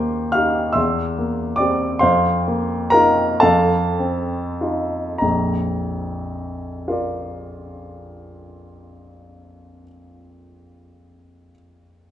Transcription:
grand piano
Already playing: D#2 A#3 C5 G5 C6
0.32 D#4 G4 F5 F6
0.73 E2 E5 C6 E6
1.18 A#3
1.56 C4 G4 D5 D6
1.99 F2 C5 F5 C6
2.48 A#3
2.90 D#4 F4 A#4 A#5
3.40 F2 A4 F5 A5
3.99 C4
4.61 D#4 F4
5.18 A#1 F2 A#5
6.88 F4 A#4 D5

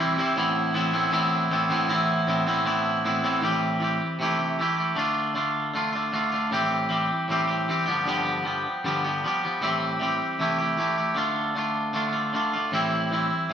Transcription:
clean electric guitar
Already playing: C3
0.00 E3 G3 C4 E4
0.17 C3 E3 G3 C4 E4
0.36 A2 E3 B3 C4 E4
0.73 A2 E3 B3 C4 E4
0.93 A2 E3 B3 C4 E4
1.11 A2 E3 B3 C4 E4
1.51 A2 E3 B3 C4 E4
1.69 A2 E3 B3 C4 E4
1.88 A2 E3 B3 C4 E4
2.27 A2 E3 B3 C4 E4
2.47 A2 E3 B3 C4 E4
2.65 A2 E3 B3 C4 E4
3.05 A2 E3 B3 C4 E4
3.23 A2 E3 B3 C4 E4
3.41 A2 E3 G3 C4 G4
3.80 E3 G3 C4
3.84 G4
4.19 C3 E3 A3 E4
4.23 G4
4.39 A3 E4 G4
4.59 E3 A3 E4 G4
4.76 A3 E4 G4
4.96 D3 A3 D4 F4
5.34 D3 A3 D4 F4
5.74 D3 A3 D4 F4
5.92 A3 D4 F4
6.12 D3 A3 D4 F4
6.32 A3 D4 F4
6.51 A2 E3 G3 C4 G4
6.89 E3 G3 C4 G4
7.28 A2 E3 G3 C4 G4
7.47 G3 C4 G4
7.68 E3 G3 C4 G4
7.86 G2 D3 F3 G3 B3 G4
8.06 G2 D3 F3 G3 B3 G4
8.44 F3 G3 B3 G4
8.84 G2 D3 F3 G3 B3 G4
9.04 F3 G3 B3 G4
9.24 F3 G3 B3 G4
9.43 F3 G3 B3 G4
9.61 A2 E3 G3 C4 G4
9.99 E3 G3 C4 G4
10.39 C3 E3 A3 E4 G4
10.58 A3 E4 G4
10.77 E3 A3 E4 G4
10.98 A3 E4 G4
11.15 D3 A3 D4 F4
11.55 D3 A3 D4 F4
11.93 D3 A3 D4 F4
12.13 A3 D4 F4
12.33 D3 A3 D4 F4
12.53 A3 D4 F4
12.72 A2 E3 G3 C4 E4
13.11 E3 G3 C4 E4
13.50 A2

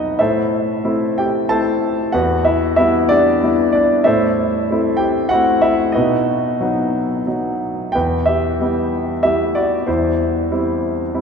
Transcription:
grand piano
Already playing: B2 F#3 B3 D#4 F#4 B4 D#5 F#5
0.19 A2 E4 A4 C5 E5
0.84 A3 C4 E4
1.18 G4 G5
1.49 A3 C4 E4 A4 C5 A5
2.12 E2 F#4 B4 F#5
2.45 E4 E5
2.76 G3 B3 E4 E5
3.09 D4 G4 D5
3.43 G3 B3 E4
3.72 D4 D5
4.04 A2 E4 A4 C5 E5
4.71 A3 C4 E4
4.97 G4 G5
5.29 A3 C4 E4 F#4 F#5
5.62 E4 E5
5.92 B2 D#4 F#4 B4 D#5
6.61 F#3 B3 D#4
7.27 F#3 B3 D#4
7.92 E2 B4 G5
8.26 G4 E5
8.60 G3 B3 E4
9.23 G3 B3 E4 G4 E5
9.55 F#4 D5
9.87 E2 E4 C5
10.51 G3 C4 E4
11.14 G3 C4 E4

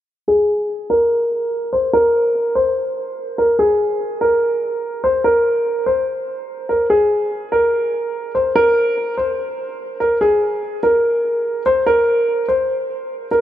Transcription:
grand piano
0.28 G#4
0.90 A#4
1.73 C5
1.93 A#4
2.55 C5
3.38 A#4
3.59 G#4
4.21 A#4
5.04 C5
5.24 A#4
5.86 C5
6.69 A#4
6.90 G#4
7.52 A#4
8.35 C5
8.56 A#4
9.18 C5
10.00 A#4
10.21 G#4
10.83 A#4
11.66 C5
11.86 A#4
12.48 C5
13.31 A#4

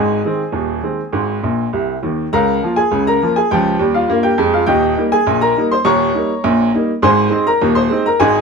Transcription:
upright piano
Already playing: G#1 G#2 G#4 D#5 G#5
0.25 D#3 G#3 C4
0.52 D#1 D#2
0.83 D#3 G#3 C4
1.12 G#1 G#2
1.43 A#1 A#2
1.73 C2 C3
2.03 D#2 D#3
2.33 C#2 C#3 A#4 F5 A#5
2.63 F3 A#3 F4
2.76 G#4 G#5
2.91 C#2 C#3
3.07 A#4 A#5
3.22 F3 A#3 F4
3.36 G#4 G#5
3.51 C#2 F3 G4 G5
3.79 D#2 G3
3.94 F4 F5
4.08 G2 A#3
4.23 G4 G5
4.38 F2 G#3
4.54 F4 F5
4.66 D#1 D#2 G4 D#5 G5
4.97 G3 A#3 D#4
5.12 G#4 G#5
5.27 A#1 A#2
5.41 A#4 A#5
5.57 G3 A#3 D#4
5.71 C5 C6
5.85 D#1 D#2 C#5 A#5 C#6
6.14 G3 A#3 D#4
6.44 A#1 A#2
6.74 G3 A#3 D#4
7.02 G#1 G#2 C5 G#5 C6
7.30 G#3 C4 D#4
7.47 A#4 A#5
7.61 D#1 D#2
7.75 C5 C6
7.90 G#3 C4 D#4
8.06 A#4 A#5
8.20 G#1 G#2 G#4 D#5 G#5

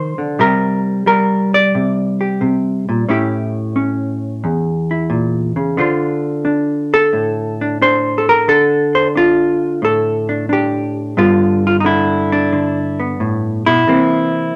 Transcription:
hollow-body jazz guitar
Already playing: C3 D#3 F3 D#4 C5
0.18 D3
0.39 C3 G3 G4 A#4
1.06 G3 A#4
1.54 D5
1.75 C3
2.21 G4
2.41 C3
2.89 A#2
3.09 A2 C#4 E4 G4
3.76 C#4
4.44 E2
4.91 E4
5.10 A#2
5.56 C#3
5.77 D3 D4 F4 C5
6.45 D4
6.94 A4
7.13 A2
7.61 D4
7.82 D4 C5
8.18 A4
8.29 A#4
8.48 D3 A4
8.95 C5
9.15 D4 F4
9.82 A2 A4
10.29 D4
10.49 D4 G4
11.17 G2 D3 B3 F4
11.67 F4
11.80 D#4
11.85 D3 E4
12.32 D4
12.53 D3
13.00 B3
13.20 A2
13.66 B2 E4
13.87 C3 E3 A#3 C4

